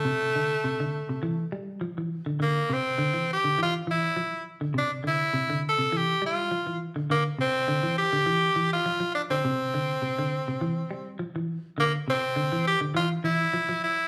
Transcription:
X:1
M:4/4
L:1/16
Q:"Swing 16ths" 1/4=102
K:Cmix
V:1 name="Tenor saxophone"
A,8- A,2 z6 | B,2 C4 G2 F2 E4 z2 | D2 E4 A2 G2 F4 z2 | B,2 C4 G4- G F3 D C- |
C12 z4 | B,2 C4 G2 F2 E4 E2 |]
V:2 name="Clean electric guitar" clef=bass
C,2 D,2 C, D,2 C, E,2 G,2 F, E,2 D, | D,2 C,2 D, E,2 D, E,2 E,2 F, z2 D, | C,2 D,2 C, D,2 C, E,2 G,2 F, E,2 D, | D,2 C,2 D, E,2 D, E,2 E,2 F, F,2 D, |
C,2 D,2 C, D,2 C, E,2 G,2 F, E,2 z | D,2 C,2 D, E,2 D, E,2 E,2 F, F,2 z |]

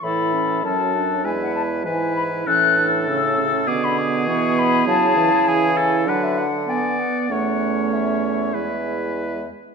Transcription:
X:1
M:4/4
L:1/16
Q:1/4=99
K:A
V:1 name="Flute"
b4 a4 g f a2 g2 b2 | f'3 z e'4 d' b d'2 c'2 b2 | a4 g4 f e f2 g2 f2 | f4 e8- e2 z2 |]
V:2 name="Oboe"
A4 A4 B4 B4 | A8 G8- | G4 G2 A2 B2 z2 d4 | c8 B6 z2 |]
V:3 name="Clarinet"
E2 C2 C2 D2 E4 E4 | C2 D2 C4 B,4 B,4 | E8 D2 z2 B,4 | C8 E6 z2 |]
V:4 name="French horn" clef=bass
E,4 F,4 G,4 E,4 | E,4 C,2 C,2 D,4 E,4 | F,2 E,2 E,4 F,2 z2 B,4 | A,8 G,6 z2 |]
V:5 name="Bassoon" clef=bass
A,,4 F,,4 E,,4 G,,4 | A,,8 B,,8 | C,8 D,6 z2 | E,,8 E,,6 z2 |]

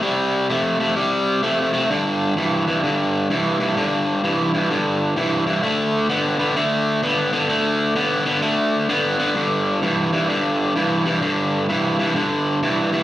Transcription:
X:1
M:4/4
L:1/8
Q:"Swing" 1/4=129
K:G
V:1 name="Overdriven electric guitar" clef=bass
[C,G,]2 [C,A,] [C,A,] [C,G,]2 [C,A,] [C,A,] | [G,,D,]2 [G,,E,] [G,,E,] [G,,D,]2 [G,,E,] [G,,E,] | [G,,D,]2 [G,,E,] [G,,E,] [G,,D,]2 [G,,E,] [G,,E,] | [D,A,]2 [D,B,] [D,B,] [D,A,]2 [D,B,] [D,B,] |
[D,A,]2 [D,B,] [D,B,] [D,A,]2 [D,B,] [D,B,] | [G,,D,]2 [G,,E,] [G,,E,] [G,,D,]2 [G,,E,] [G,,E,] | [G,,D,]2 [G,,E,] [G,,E,] [G,,D,]2 [G,,E,] [G,,E,] |]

